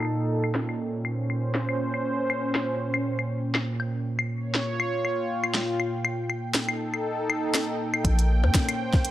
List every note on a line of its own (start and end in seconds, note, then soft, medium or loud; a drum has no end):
0.00 9.11 A#2 medium
0.00 4.05 A#3 medium
0.00 1.66 D#4 medium
0.00 1.66 A4 medium
0.00 4.05 G5 medium
0.00 claves medium
0.03 claves medium
0.05 claves soft
0.29 4.85 C#4 medium
0.44 claves medium
0.55 snare loud
0.69 claves soft
1.05 4.05 C5 medium
1.05 claves medium
1.30 claves soft
1.55 snare loud
1.69 claves medium
1.94 claves soft
2.30 claves medium
2.55 snare loud
2.55 claves medium
2.94 claves medium
3.19 claves medium
3.55 snare loud
3.55 claves medium
3.80 claves soft
4.19 9.11 A#3 medium
4.19 claves medium
4.29 6.05 C#5 medium
4.53 6.85 F4 medium
4.53 snare loud
4.80 claves medium
4.96 9.11 G5 medium
5.05 claves medium
5.44 claves medium
5.55 snare loud
5.80 claves medium
6.05 claves medium
6.30 claves medium
6.44 8.79 D#4 medium
6.44 8.88 A4 medium
6.55 snare loud
6.69 claves medium
6.94 claves soft
7.30 claves medium
7.55 snare loud
7.55 claves medium
7.94 claves medium
8.05 8.45 A#1 medium
8.05 kick loud
8.05 closed hi-hat medium
8.19 9.11 C#4 medium
8.19 closed hi-hat medium
8.44 8.51 F2 medium
8.44 percussion blips medium
8.55 kick loud
8.55 snare loud
8.55 closed hi-hat medium
8.60 9.11 C5 medium
8.69 closed hi-hat medium
8.69 claves medium
8.94 kick loud
8.94 snare medium
9.05 closed hi-hat medium